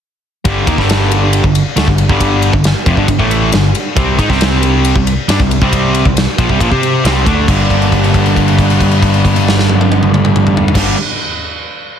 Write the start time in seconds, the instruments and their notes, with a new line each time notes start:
0.45 picked electric bass G1, distorted electric guitar G2 D3 G3, kick, ride
0.67 picked electric bass D#2, distorted electric guitar D#3 A#3, kick, ride
0.78 picked electric bass G1, distorted electric guitar G2 D3 G3, kick, snare
0.89 snare, ride
1.11 ride
1.33 ride
1.44 picked electric bass G1, distorted electric guitar G2 D3, kick
1.55 ride
1.76 picked electric bass D2, distorted electric guitar D3 A3, snare, ride
1.88 picked electric bass G1, distorted electric guitar G2 D3, kick
1.98 ride
2.09 picked electric bass G1, distorted electric guitar G2 D3 G3, kick
2.20 kick, ride
2.42 ride
2.53 picked electric bass G1, distorted electric guitar G2 D3, kick
2.64 snare, ride
2.86 picked electric bass F1, distorted electric guitar F2 C3, kick, ride
2.97 picked electric bass G1, distorted electric guitar G2 D3, kick
3.08 picked electric bass G1, distorted electric guitar G2 D3, kick, ride
3.19 picked electric bass A1, distorted electric guitar A2 E3 A3, kick
3.31 ride
3.52 picked electric bass G1, distorted electric guitar G2 D3, snare, ride
3.75 ride
3.96 picked electric bass C2, distorted electric guitar C3 G3 C4, kick, ride
4.19 picked electric bass G#2, distorted electric guitar G#3 D#4, kick, ride
4.29 picked electric bass C2, distorted electric guitar C3 G3 C4, kick, snare
4.41 snare, ride
4.63 ride
4.85 ride
4.96 picked electric bass C2, distorted electric guitar C3 G3, kick
5.07 ride
5.28 picked electric bass G2, distorted electric guitar G3 D4, snare, ride
5.40 picked electric bass C2, distorted electric guitar C3 G3, kick
5.51 ride
5.62 picked electric bass C2, distorted electric guitar C3 G3 C4, kick
5.73 kick, ride
5.95 ride
6.05 picked electric bass C2, distorted electric guitar C3 G3, kick
6.17 snare, ride
6.38 picked electric bass A#1, distorted electric guitar A#2 F3, kick, ride
6.49 picked electric bass C2, distorted electric guitar C3 G3, kick
6.60 picked electric bass A#1, distorted electric guitar A#2 F3, kick, ride
6.71 picked electric bass C3, distorted electric guitar C4 G4 C5, kick
6.83 ride
7.04 picked electric bass C2, distorted electric guitar C3 G3 C4, snare, ride
7.25 picked electric bass D2, distorted electric guitar D3 A3 D4, kick, ride
7.47 picked electric bass G1, distorted electric guitar G2 D3 G3 A#3 D4, kick, crash
7.70 kick, crash
7.82 crash
7.92 kick, crash
8.04 crash
8.14 kick, crash
8.26 crash
8.36 kick, crash
8.48 crash
8.59 kick, crash
8.70 crash
8.80 kick, crash
8.91 crash
9.02 kick, crash
9.14 crash
9.25 kick, crash
9.36 crash
9.48 snare
9.59 snare
9.69 high tom
9.81 high tom
9.92 high tom
10.03 mid tom
10.14 mid tom
10.25 mid tom
10.36 mid tom
10.47 mid tom
10.57 floor tom
10.68 floor tom
10.73 picked electric bass G1, distorted electric guitar G2 D3 G3 A#3, kick, snare, crash
10.77 distorted electric guitar D4